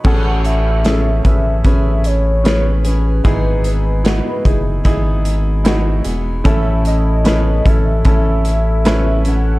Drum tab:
CC |x-------|--------|--------|
HH |-xxxxxxx|xxxxxxxx|xxxxxxxx|
SD |--o---o-|--o---o-|--o---o-|
BD |o--oo---|o--oo---|o--oo---|